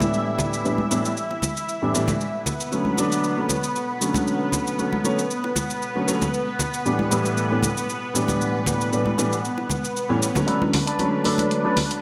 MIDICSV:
0, 0, Header, 1, 8, 480
1, 0, Start_track
1, 0, Key_signature, 2, "minor"
1, 0, Tempo, 517241
1, 122, Time_signature, 4, 2, 24, 8
1, 11151, End_track
2, 0, Start_track
2, 0, Title_t, "Clean electric guitar"
2, 0, Program_c, 0, 27
2, 9713, Note_on_c, 0, 62, 104
2, 9721, Note_on_c, 0, 69, 96
2, 9730, Note_on_c, 0, 71, 116
2, 9846, Note_off_c, 0, 62, 0
2, 9850, Note_off_c, 0, 69, 0
2, 9854, Note_off_c, 0, 71, 0
2, 10081, Note_on_c, 0, 62, 82
2, 10090, Note_on_c, 0, 69, 73
2, 10100, Note_on_c, 0, 71, 91
2, 10261, Note_off_c, 0, 62, 0
2, 10265, Note_off_c, 0, 69, 0
2, 10271, Note_off_c, 0, 71, 0
2, 10430, Note_on_c, 0, 62, 79
2, 10440, Note_on_c, 0, 69, 69
2, 10449, Note_on_c, 0, 71, 85
2, 10620, Note_off_c, 0, 62, 0
2, 10625, Note_off_c, 0, 69, 0
2, 10630, Note_off_c, 0, 71, 0
2, 10800, Note_on_c, 0, 62, 103
2, 10808, Note_on_c, 0, 69, 98
2, 10816, Note_on_c, 0, 71, 117
2, 10916, Note_off_c, 0, 62, 0
2, 10920, Note_off_c, 0, 69, 0
2, 10924, Note_off_c, 0, 71, 0
2, 11151, End_track
3, 0, Start_track
3, 0, Title_t, "Analog synth pad"
3, 0, Program_c, 1, 89
3, 0, Note_on_c, 1, 64, 78
3, 0, Note_on_c, 1, 76, 78
3, 2043, Note_on_c, 1, 59, 76
3, 2043, Note_on_c, 1, 71, 78
3, 2052, Note_off_c, 1, 64, 0
3, 2052, Note_off_c, 1, 76, 0
3, 9709, Note_off_c, 1, 71, 0
3, 9720, Note_on_c, 1, 71, 78
3, 9721, Note_on_c, 1, 62, 79
3, 9733, Note_off_c, 1, 59, 0
3, 11151, Note_off_c, 1, 62, 0
3, 11151, Note_off_c, 1, 71, 0
3, 11151, End_track
4, 0, Start_track
4, 0, Title_t, "Grand piano"
4, 0, Program_c, 2, 0
4, 0, Note_on_c, 2, 45, 69
4, 0, Note_on_c, 2, 52, 64
4, 0, Note_on_c, 2, 55, 66
4, 0, Note_on_c, 2, 59, 64
4, 0, Note_on_c, 2, 62, 76
4, 568, Note_off_c, 2, 45, 0
4, 571, Note_off_c, 2, 52, 0
4, 573, Note_off_c, 2, 55, 0
4, 575, Note_off_c, 2, 59, 0
4, 577, Note_off_c, 2, 62, 0
4, 597, Note_on_c, 2, 45, 66
4, 600, Note_on_c, 2, 52, 60
4, 602, Note_on_c, 2, 55, 60
4, 604, Note_on_c, 2, 59, 58
4, 605, Note_on_c, 2, 62, 75
4, 741, Note_off_c, 2, 45, 0
4, 742, Note_off_c, 2, 52, 0
4, 743, Note_off_c, 2, 55, 0
4, 744, Note_off_c, 2, 59, 0
4, 745, Note_off_c, 2, 62, 0
4, 839, Note_on_c, 2, 45, 75
4, 842, Note_on_c, 2, 52, 71
4, 844, Note_on_c, 2, 55, 73
4, 847, Note_on_c, 2, 59, 75
4, 849, Note_on_c, 2, 62, 89
4, 982, Note_off_c, 2, 45, 0
4, 983, Note_off_c, 2, 52, 0
4, 984, Note_off_c, 2, 55, 0
4, 986, Note_off_c, 2, 59, 0
4, 987, Note_off_c, 2, 62, 0
4, 1687, Note_on_c, 2, 45, 72
4, 1689, Note_on_c, 2, 52, 67
4, 1692, Note_on_c, 2, 55, 66
4, 1695, Note_on_c, 2, 59, 63
4, 1696, Note_on_c, 2, 62, 77
4, 1773, Note_off_c, 2, 45, 0
4, 1774, Note_off_c, 2, 52, 0
4, 1776, Note_off_c, 2, 55, 0
4, 1777, Note_off_c, 2, 59, 0
4, 1778, Note_off_c, 2, 62, 0
4, 1798, Note_on_c, 2, 45, 86
4, 1801, Note_on_c, 2, 52, 80
4, 1803, Note_on_c, 2, 55, 77
4, 1804, Note_on_c, 2, 59, 77
4, 1807, Note_on_c, 2, 62, 96
4, 1941, Note_off_c, 2, 45, 0
4, 1943, Note_off_c, 2, 52, 0
4, 1944, Note_off_c, 2, 55, 0
4, 1945, Note_off_c, 2, 59, 0
4, 1946, Note_off_c, 2, 62, 0
4, 2517, Note_on_c, 2, 50, 68
4, 2521, Note_on_c, 2, 54, 64
4, 2525, Note_on_c, 2, 57, 65
4, 2527, Note_on_c, 2, 61, 78
4, 2733, Note_off_c, 2, 50, 0
4, 2735, Note_off_c, 2, 54, 0
4, 2736, Note_off_c, 2, 57, 0
4, 2737, Note_off_c, 2, 61, 0
4, 2759, Note_on_c, 2, 50, 85
4, 2763, Note_on_c, 2, 54, 76
4, 2766, Note_on_c, 2, 57, 77
4, 2770, Note_on_c, 2, 62, 94
4, 3098, Note_off_c, 2, 50, 0
4, 3100, Note_off_c, 2, 54, 0
4, 3102, Note_off_c, 2, 57, 0
4, 3104, Note_off_c, 2, 62, 0
4, 3127, Note_on_c, 2, 50, 72
4, 3131, Note_on_c, 2, 54, 64
4, 3135, Note_on_c, 2, 57, 65
4, 3138, Note_on_c, 2, 61, 75
4, 3255, Note_off_c, 2, 50, 0
4, 3256, Note_off_c, 2, 54, 0
4, 3258, Note_off_c, 2, 57, 0
4, 3260, Note_off_c, 2, 61, 0
4, 3714, Note_on_c, 2, 50, 74
4, 3720, Note_on_c, 2, 54, 66
4, 3727, Note_on_c, 2, 57, 68
4, 3734, Note_on_c, 2, 61, 76
4, 4411, Note_off_c, 2, 50, 0
4, 4414, Note_off_c, 2, 54, 0
4, 4417, Note_off_c, 2, 57, 0
4, 4421, Note_off_c, 2, 61, 0
4, 4436, Note_on_c, 2, 50, 67
4, 4439, Note_on_c, 2, 54, 61
4, 4441, Note_on_c, 2, 57, 64
4, 4444, Note_on_c, 2, 61, 77
4, 4580, Note_off_c, 2, 50, 0
4, 4582, Note_off_c, 2, 54, 0
4, 4583, Note_off_c, 2, 57, 0
4, 4584, Note_off_c, 2, 61, 0
4, 4675, Note_on_c, 2, 50, 79
4, 4676, Note_on_c, 2, 54, 75
4, 4681, Note_on_c, 2, 57, 70
4, 4684, Note_on_c, 2, 61, 91
4, 4819, Note_off_c, 2, 50, 0
4, 4820, Note_off_c, 2, 54, 0
4, 4823, Note_off_c, 2, 57, 0
4, 4824, Note_off_c, 2, 61, 0
4, 5522, Note_on_c, 2, 50, 71
4, 5526, Note_on_c, 2, 54, 67
4, 5528, Note_on_c, 2, 57, 65
4, 5530, Note_on_c, 2, 61, 79
4, 5611, Note_off_c, 2, 50, 0
4, 5613, Note_off_c, 2, 54, 0
4, 5614, Note_off_c, 2, 57, 0
4, 5615, Note_off_c, 2, 61, 0
4, 5632, Note_on_c, 2, 50, 85
4, 5637, Note_on_c, 2, 54, 84
4, 5639, Note_on_c, 2, 57, 76
4, 5642, Note_on_c, 2, 61, 98
4, 5778, Note_off_c, 2, 50, 0
4, 5781, Note_off_c, 2, 54, 0
4, 5782, Note_off_c, 2, 57, 0
4, 5783, Note_off_c, 2, 61, 0
4, 6357, Note_on_c, 2, 45, 70
4, 6359, Note_on_c, 2, 52, 65
4, 6361, Note_on_c, 2, 55, 67
4, 6364, Note_on_c, 2, 59, 65
4, 6366, Note_on_c, 2, 62, 77
4, 6573, Note_off_c, 2, 45, 0
4, 6573, Note_off_c, 2, 52, 0
4, 6574, Note_off_c, 2, 55, 0
4, 6576, Note_off_c, 2, 59, 0
4, 6577, Note_off_c, 2, 62, 0
4, 6592, Note_on_c, 2, 45, 88
4, 6595, Note_on_c, 2, 52, 79
4, 6597, Note_on_c, 2, 55, 76
4, 6600, Note_on_c, 2, 59, 75
4, 6601, Note_on_c, 2, 64, 89
4, 6935, Note_off_c, 2, 45, 0
4, 6936, Note_off_c, 2, 52, 0
4, 6937, Note_off_c, 2, 55, 0
4, 6939, Note_off_c, 2, 59, 0
4, 6939, Note_off_c, 2, 64, 0
4, 6963, Note_on_c, 2, 45, 75
4, 6967, Note_on_c, 2, 52, 66
4, 6969, Note_on_c, 2, 55, 66
4, 6970, Note_on_c, 2, 59, 66
4, 6973, Note_on_c, 2, 62, 80
4, 7093, Note_off_c, 2, 45, 0
4, 7094, Note_off_c, 2, 52, 0
4, 7095, Note_off_c, 2, 55, 0
4, 7096, Note_off_c, 2, 59, 0
4, 7097, Note_off_c, 2, 62, 0
4, 7550, Note_on_c, 2, 45, 74
4, 7554, Note_on_c, 2, 52, 65
4, 7560, Note_on_c, 2, 55, 68
4, 7565, Note_on_c, 2, 59, 70
4, 7570, Note_on_c, 2, 62, 81
4, 8249, Note_off_c, 2, 45, 0
4, 8251, Note_off_c, 2, 52, 0
4, 8254, Note_off_c, 2, 55, 0
4, 8256, Note_off_c, 2, 59, 0
4, 8259, Note_off_c, 2, 62, 0
4, 8276, Note_on_c, 2, 45, 70
4, 8278, Note_on_c, 2, 52, 63
4, 8282, Note_on_c, 2, 55, 63
4, 8282, Note_on_c, 2, 59, 64
4, 8286, Note_on_c, 2, 62, 79
4, 8420, Note_off_c, 2, 45, 0
4, 8421, Note_off_c, 2, 52, 0
4, 8423, Note_off_c, 2, 55, 0
4, 8423, Note_off_c, 2, 59, 0
4, 8425, Note_off_c, 2, 62, 0
4, 8514, Note_on_c, 2, 45, 79
4, 8518, Note_on_c, 2, 52, 78
4, 8520, Note_on_c, 2, 55, 76
4, 8522, Note_on_c, 2, 59, 76
4, 8525, Note_on_c, 2, 62, 94
4, 8660, Note_off_c, 2, 45, 0
4, 8661, Note_off_c, 2, 52, 0
4, 8662, Note_off_c, 2, 55, 0
4, 8663, Note_off_c, 2, 59, 0
4, 8665, Note_off_c, 2, 62, 0
4, 9362, Note_on_c, 2, 45, 86
4, 9366, Note_on_c, 2, 52, 80
4, 9367, Note_on_c, 2, 55, 80
4, 9371, Note_on_c, 2, 59, 80
4, 9372, Note_on_c, 2, 61, 95
4, 9492, Note_off_c, 2, 45, 0
4, 9494, Note_off_c, 2, 52, 0
4, 9494, Note_off_c, 2, 55, 0
4, 9496, Note_off_c, 2, 59, 0
4, 9497, Note_off_c, 2, 61, 0
4, 9604, Note_on_c, 2, 50, 85
4, 9606, Note_on_c, 2, 54, 72
4, 9610, Note_on_c, 2, 57, 74
4, 9612, Note_on_c, 2, 61, 95
4, 9958, Note_off_c, 2, 50, 0
4, 9959, Note_off_c, 2, 54, 0
4, 9961, Note_off_c, 2, 57, 0
4, 9962, Note_off_c, 2, 61, 0
4, 10196, Note_on_c, 2, 50, 70
4, 10200, Note_on_c, 2, 54, 65
4, 10202, Note_on_c, 2, 57, 66
4, 10206, Note_on_c, 2, 61, 77
4, 10412, Note_off_c, 2, 50, 0
4, 10414, Note_off_c, 2, 54, 0
4, 10415, Note_off_c, 2, 57, 0
4, 10417, Note_off_c, 2, 61, 0
4, 10437, Note_on_c, 2, 50, 86
4, 10440, Note_on_c, 2, 54, 77
4, 10442, Note_on_c, 2, 57, 81
4, 10445, Note_on_c, 2, 62, 92
4, 10777, Note_off_c, 2, 50, 0
4, 10779, Note_off_c, 2, 54, 0
4, 10780, Note_off_c, 2, 57, 0
4, 10781, Note_off_c, 2, 62, 0
4, 10807, Note_on_c, 2, 50, 74
4, 10810, Note_on_c, 2, 54, 67
4, 10813, Note_on_c, 2, 57, 68
4, 10816, Note_on_c, 2, 61, 80
4, 10934, Note_off_c, 2, 50, 0
4, 10936, Note_off_c, 2, 54, 0
4, 10937, Note_off_c, 2, 57, 0
4, 10939, Note_off_c, 2, 61, 0
4, 11151, End_track
5, 0, Start_track
5, 0, Title_t, "Riser"
5, 0, Program_c, 3, 103
5, 9719, Note_on_c, 3, 60, 75
5, 11151, Note_off_c, 3, 60, 0
5, 11151, End_track
6, 0, Start_track
6, 0, Title_t, "Swell"
6, 0, Program_c, 4, 103
6, 8760, Note_on_c, 4, 60, 64
6, 9721, Note_off_c, 4, 60, 0
6, 11151, End_track
7, 0, Start_track
7, 0, Title_t, "Muted clean electric guitar strokes"
7, 9952, Note_on_c, 9, 29, 31
7, 10045, Note_off_c, 9, 29, 0
7, 11043, Note_on_c, 9, 29, 31
7, 11136, Note_off_c, 9, 29, 0
7, 11151, End_track
8, 0, Start_track
8, 0, Title_t, "Drums"
8, 3, Note_on_c, 9, 64, 75
8, 15, Note_on_c, 9, 63, 88
8, 15, Note_on_c, 9, 82, 37
8, 95, Note_off_c, 9, 64, 0
8, 108, Note_off_c, 9, 63, 0
8, 108, Note_off_c, 9, 82, 0
8, 127, Note_on_c, 9, 82, 28
8, 219, Note_off_c, 9, 82, 0
8, 357, Note_on_c, 9, 64, 84
8, 366, Note_on_c, 9, 82, 67
8, 450, Note_off_c, 9, 64, 0
8, 459, Note_off_c, 9, 82, 0
8, 496, Note_on_c, 9, 82, 37
8, 588, Note_off_c, 9, 82, 0
8, 606, Note_on_c, 9, 82, 26
8, 698, Note_off_c, 9, 82, 0
8, 727, Note_on_c, 9, 63, 81
8, 819, Note_off_c, 9, 63, 0
8, 843, Note_on_c, 9, 60, 39
8, 846, Note_on_c, 9, 82, 64
8, 936, Note_off_c, 9, 60, 0
8, 939, Note_off_c, 9, 82, 0
8, 976, Note_on_c, 9, 82, 39
8, 1068, Note_off_c, 9, 82, 0
8, 1087, Note_on_c, 9, 82, 27
8, 1179, Note_off_c, 9, 82, 0
8, 1213, Note_on_c, 9, 60, 44
8, 1305, Note_off_c, 9, 60, 0
8, 1318, Note_on_c, 9, 63, 58
8, 1320, Note_on_c, 9, 64, 64
8, 1325, Note_on_c, 9, 60, 45
8, 1326, Note_on_c, 9, 82, 68
8, 1411, Note_off_c, 9, 63, 0
8, 1412, Note_off_c, 9, 64, 0
8, 1418, Note_off_c, 9, 60, 0
8, 1419, Note_off_c, 9, 82, 0
8, 1455, Note_on_c, 9, 82, 38
8, 1548, Note_off_c, 9, 82, 0
8, 1566, Note_on_c, 9, 82, 28
8, 1659, Note_off_c, 9, 82, 0
8, 1807, Note_on_c, 9, 82, 69
8, 1899, Note_off_c, 9, 82, 0
8, 1927, Note_on_c, 9, 64, 75
8, 1931, Note_on_c, 9, 63, 88
8, 1935, Note_on_c, 9, 82, 39
8, 2020, Note_off_c, 9, 64, 0
8, 2024, Note_off_c, 9, 63, 0
8, 2028, Note_off_c, 9, 82, 0
8, 2047, Note_on_c, 9, 82, 28
8, 2140, Note_off_c, 9, 82, 0
8, 2283, Note_on_c, 9, 64, 71
8, 2286, Note_on_c, 9, 82, 69
8, 2376, Note_off_c, 9, 64, 0
8, 2379, Note_off_c, 9, 82, 0
8, 2415, Note_on_c, 9, 82, 39
8, 2508, Note_off_c, 9, 82, 0
8, 2526, Note_on_c, 9, 82, 30
8, 2619, Note_off_c, 9, 82, 0
8, 2643, Note_on_c, 9, 63, 69
8, 2736, Note_off_c, 9, 63, 0
8, 2759, Note_on_c, 9, 60, 47
8, 2765, Note_on_c, 9, 82, 72
8, 2851, Note_off_c, 9, 60, 0
8, 2857, Note_off_c, 9, 82, 0
8, 2894, Note_on_c, 9, 82, 40
8, 2987, Note_off_c, 9, 82, 0
8, 3004, Note_on_c, 9, 82, 31
8, 3097, Note_off_c, 9, 82, 0
8, 3236, Note_on_c, 9, 63, 50
8, 3240, Note_on_c, 9, 64, 67
8, 3242, Note_on_c, 9, 60, 43
8, 3244, Note_on_c, 9, 82, 72
8, 3329, Note_off_c, 9, 63, 0
8, 3333, Note_off_c, 9, 64, 0
8, 3335, Note_off_c, 9, 60, 0
8, 3336, Note_off_c, 9, 82, 0
8, 3373, Note_on_c, 9, 82, 39
8, 3466, Note_off_c, 9, 82, 0
8, 3486, Note_on_c, 9, 82, 29
8, 3579, Note_off_c, 9, 82, 0
8, 3725, Note_on_c, 9, 82, 69
8, 3818, Note_off_c, 9, 82, 0
8, 3845, Note_on_c, 9, 64, 73
8, 3846, Note_on_c, 9, 63, 92
8, 3854, Note_on_c, 9, 82, 40
8, 3938, Note_off_c, 9, 63, 0
8, 3938, Note_off_c, 9, 64, 0
8, 3947, Note_off_c, 9, 82, 0
8, 3966, Note_on_c, 9, 82, 29
8, 4059, Note_off_c, 9, 82, 0
8, 4198, Note_on_c, 9, 64, 74
8, 4205, Note_on_c, 9, 82, 72
8, 4291, Note_off_c, 9, 64, 0
8, 4297, Note_off_c, 9, 82, 0
8, 4335, Note_on_c, 9, 82, 44
8, 4427, Note_off_c, 9, 82, 0
8, 4444, Note_on_c, 9, 82, 30
8, 4537, Note_off_c, 9, 82, 0
8, 4572, Note_on_c, 9, 63, 79
8, 4665, Note_off_c, 9, 63, 0
8, 4683, Note_on_c, 9, 60, 46
8, 4684, Note_on_c, 9, 82, 70
8, 4776, Note_off_c, 9, 60, 0
8, 4777, Note_off_c, 9, 82, 0
8, 4813, Note_on_c, 9, 82, 41
8, 4906, Note_off_c, 9, 82, 0
8, 4924, Note_on_c, 9, 82, 32
8, 5016, Note_off_c, 9, 82, 0
8, 5048, Note_on_c, 9, 60, 53
8, 5141, Note_off_c, 9, 60, 0
8, 5155, Note_on_c, 9, 63, 51
8, 5158, Note_on_c, 9, 64, 65
8, 5162, Note_on_c, 9, 82, 71
8, 5164, Note_on_c, 9, 60, 44
8, 5248, Note_off_c, 9, 63, 0
8, 5251, Note_off_c, 9, 64, 0
8, 5255, Note_off_c, 9, 82, 0
8, 5256, Note_off_c, 9, 60, 0
8, 5291, Note_on_c, 9, 82, 43
8, 5384, Note_off_c, 9, 82, 0
8, 5403, Note_on_c, 9, 82, 30
8, 5495, Note_off_c, 9, 82, 0
8, 5642, Note_on_c, 9, 82, 72
8, 5735, Note_off_c, 9, 82, 0
8, 5767, Note_on_c, 9, 63, 73
8, 5770, Note_on_c, 9, 64, 71
8, 5770, Note_on_c, 9, 82, 42
8, 5859, Note_off_c, 9, 63, 0
8, 5863, Note_off_c, 9, 64, 0
8, 5863, Note_off_c, 9, 82, 0
8, 5881, Note_on_c, 9, 82, 30
8, 5974, Note_off_c, 9, 82, 0
8, 6117, Note_on_c, 9, 64, 78
8, 6122, Note_on_c, 9, 82, 73
8, 6210, Note_off_c, 9, 64, 0
8, 6215, Note_off_c, 9, 82, 0
8, 6251, Note_on_c, 9, 82, 43
8, 6344, Note_off_c, 9, 82, 0
8, 6363, Note_on_c, 9, 82, 31
8, 6456, Note_off_c, 9, 82, 0
8, 6487, Note_on_c, 9, 63, 77
8, 6580, Note_off_c, 9, 63, 0
8, 6599, Note_on_c, 9, 60, 44
8, 6602, Note_on_c, 9, 82, 75
8, 6692, Note_off_c, 9, 60, 0
8, 6695, Note_off_c, 9, 82, 0
8, 6732, Note_on_c, 9, 82, 43
8, 6824, Note_off_c, 9, 82, 0
8, 6843, Note_on_c, 9, 82, 32
8, 6935, Note_off_c, 9, 82, 0
8, 7076, Note_on_c, 9, 64, 71
8, 7077, Note_on_c, 9, 63, 58
8, 7079, Note_on_c, 9, 60, 42
8, 7084, Note_on_c, 9, 82, 78
8, 7168, Note_off_c, 9, 64, 0
8, 7170, Note_off_c, 9, 63, 0
8, 7171, Note_off_c, 9, 60, 0
8, 7177, Note_off_c, 9, 82, 0
8, 7214, Note_on_c, 9, 82, 43
8, 7307, Note_off_c, 9, 82, 0
8, 7326, Note_on_c, 9, 82, 32
8, 7419, Note_off_c, 9, 82, 0
8, 7565, Note_on_c, 9, 82, 76
8, 7658, Note_off_c, 9, 82, 0
8, 7684, Note_on_c, 9, 63, 79
8, 7688, Note_on_c, 9, 64, 71
8, 7695, Note_on_c, 9, 82, 44
8, 7777, Note_off_c, 9, 63, 0
8, 7780, Note_off_c, 9, 64, 0
8, 7788, Note_off_c, 9, 82, 0
8, 7807, Note_on_c, 9, 82, 30
8, 7900, Note_off_c, 9, 82, 0
8, 8040, Note_on_c, 9, 64, 89
8, 8046, Note_on_c, 9, 82, 69
8, 8133, Note_off_c, 9, 64, 0
8, 8139, Note_off_c, 9, 82, 0
8, 8176, Note_on_c, 9, 82, 43
8, 8269, Note_off_c, 9, 82, 0
8, 8285, Note_on_c, 9, 82, 30
8, 8378, Note_off_c, 9, 82, 0
8, 8404, Note_on_c, 9, 63, 79
8, 8497, Note_off_c, 9, 63, 0
8, 8519, Note_on_c, 9, 60, 45
8, 8526, Note_on_c, 9, 82, 71
8, 8612, Note_off_c, 9, 60, 0
8, 8619, Note_off_c, 9, 82, 0
8, 8655, Note_on_c, 9, 82, 42
8, 8748, Note_off_c, 9, 82, 0
8, 8767, Note_on_c, 9, 82, 31
8, 8860, Note_off_c, 9, 82, 0
8, 8887, Note_on_c, 9, 60, 53
8, 8980, Note_off_c, 9, 60, 0
8, 8996, Note_on_c, 9, 63, 52
8, 8998, Note_on_c, 9, 64, 66
8, 9001, Note_on_c, 9, 60, 46
8, 9006, Note_on_c, 9, 82, 71
8, 9089, Note_off_c, 9, 63, 0
8, 9091, Note_off_c, 9, 64, 0
8, 9094, Note_off_c, 9, 60, 0
8, 9099, Note_off_c, 9, 82, 0
8, 9135, Note_on_c, 9, 82, 40
8, 9228, Note_off_c, 9, 82, 0
8, 9248, Note_on_c, 9, 82, 30
8, 9340, Note_off_c, 9, 82, 0
8, 9487, Note_on_c, 9, 82, 70
8, 9580, Note_off_c, 9, 82, 0
8, 9607, Note_on_c, 9, 63, 83
8, 9611, Note_on_c, 9, 64, 86
8, 9616, Note_on_c, 9, 82, 43
8, 9700, Note_off_c, 9, 63, 0
8, 9703, Note_off_c, 9, 64, 0
8, 9709, Note_off_c, 9, 82, 0
8, 9723, Note_on_c, 9, 42, 50
8, 9816, Note_off_c, 9, 42, 0
8, 9853, Note_on_c, 9, 63, 91
8, 9946, Note_off_c, 9, 63, 0
8, 9961, Note_on_c, 9, 46, 96
8, 9964, Note_on_c, 9, 64, 95
8, 10054, Note_off_c, 9, 46, 0
8, 10057, Note_off_c, 9, 64, 0
8, 10091, Note_on_c, 9, 42, 65
8, 10184, Note_off_c, 9, 42, 0
8, 10198, Note_on_c, 9, 63, 64
8, 10202, Note_on_c, 9, 42, 52
8, 10291, Note_off_c, 9, 63, 0
8, 10295, Note_off_c, 9, 42, 0
8, 10434, Note_on_c, 9, 60, 52
8, 10441, Note_on_c, 9, 46, 85
8, 10527, Note_off_c, 9, 60, 0
8, 10534, Note_off_c, 9, 46, 0
8, 10561, Note_on_c, 9, 63, 89
8, 10571, Note_on_c, 9, 42, 64
8, 10654, Note_off_c, 9, 63, 0
8, 10664, Note_off_c, 9, 42, 0
8, 10683, Note_on_c, 9, 42, 52
8, 10775, Note_off_c, 9, 42, 0
8, 10917, Note_on_c, 9, 63, 62
8, 10921, Note_on_c, 9, 46, 94
8, 10921, Note_on_c, 9, 64, 82
8, 10923, Note_on_c, 9, 60, 44
8, 11010, Note_off_c, 9, 63, 0
8, 11013, Note_off_c, 9, 46, 0
8, 11014, Note_off_c, 9, 64, 0
8, 11016, Note_off_c, 9, 60, 0
8, 11051, Note_on_c, 9, 42, 63
8, 11144, Note_off_c, 9, 42, 0
8, 11151, End_track
0, 0, End_of_file